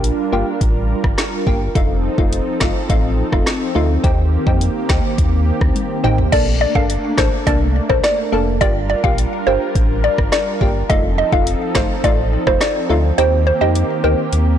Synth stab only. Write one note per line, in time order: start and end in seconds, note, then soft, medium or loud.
0.00 0.10 A#3 medium
0.00 0.11 F4 medium
0.00 0.11 G4 medium
0.32 0.53 A#3 medium
0.32 0.53 F4 medium
0.32 0.54 G4 medium
1.47 1.68 A#3 medium
1.47 1.68 F4 medium
1.47 1.68 G4 medium
1.75 1.96 A3 medium
1.75 1.96 D#4 medium
1.75 1.96 F4 loud
2.18 2.39 A3 medium
2.18 2.39 D#4 medium
2.18 2.39 F4 medium
2.61 2.82 A3 medium
2.61 2.82 D#4 medium
2.61 2.82 F4 medium
2.89 3.10 A3 medium
2.89 3.11 D#4 medium
2.89 3.11 F4 loud
3.32 3.53 A3 medium
3.32 3.53 D#4 medium
3.32 3.54 F4 medium
3.75 3.96 A3 medium
3.75 3.96 D#4 medium
3.75 3.96 F4 medium
4.04 4.25 C4 medium
4.04 4.25 D#4 medium
4.04 4.25 G4 loud
4.46 4.68 C4 medium
4.46 4.68 D#4 medium
4.46 4.68 G4 medium
4.89 5.10 C4 medium
4.89 5.11 D#4 medium
4.89 5.11 G4 medium
6.04 6.25 C4 medium
6.04 6.25 D#4 medium
6.04 6.25 G4 medium
6.32 6.53 A#3 medium
6.32 6.53 D4 medium
6.32 6.54 A4 loud
6.75 6.96 A#3 medium
6.75 6.96 D4 medium
6.75 6.96 A4 medium
7.18 7.39 A#3 medium
7.18 7.39 D4 medium
7.18 7.39 A4 medium
7.46 7.67 A#3 medium
7.46 7.68 D4 medium
7.46 7.68 A4 loud
7.89 8.10 A#3 medium
7.89 8.11 D4 medium
7.89 8.11 A4 medium
8.32 8.53 A#3 medium
8.32 8.53 D4 medium
8.32 8.54 A4 medium
8.61 8.82 A#3 medium
8.61 8.82 F4 medium
8.61 8.82 G4 loud
9.04 9.25 A#3 medium
9.04 9.25 F4 medium
9.04 9.25 G4 medium
9.47 9.68 A#3 medium
9.47 9.68 F4 medium
9.47 9.68 G4 medium
10.61 10.82 A#3 medium
10.61 10.82 F4 medium
10.61 10.82 G4 medium
10.90 11.11 A3 loud
10.90 11.11 D#4 medium
10.90 11.11 F4 loud
11.33 11.53 A3 medium
11.33 11.54 D#4 medium
11.33 11.54 F4 medium
11.75 11.96 A3 medium
11.75 11.96 D#4 medium
11.75 11.97 F4 medium
12.04 12.25 A3 loud
12.04 12.25 D#4 medium
12.04 12.25 F4 loud
12.47 12.68 A3 medium
12.47 12.68 D#4 medium
12.47 12.68 F4 medium
12.89 13.10 A3 medium
12.89 13.11 D#4 medium
12.89 13.11 F4 medium
13.18 13.39 C4 medium
13.18 13.39 D#4 medium
13.18 13.39 G4 loud
13.61 13.82 C4 medium
13.61 13.82 D#4 medium
13.61 13.82 G4 medium
14.04 14.25 C4 medium
14.04 14.25 D#4 medium
14.04 14.25 G4 medium